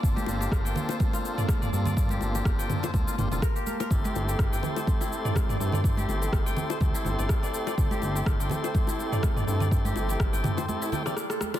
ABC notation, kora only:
X:1
M:4/4
L:1/16
Q:"Swing 16ths" 1/4=124
K:Aphr
V:1 name="Kora"
z G z G z g z c z F z d z d z d | z G z G z g z c z F z F B G B B | z G z G z g z c z E z d z d z d | z G z G z g z c z E z d z d z d |
z G z G z g z c z E z d z d z d | z G z G z g z c z E g d z A z D |]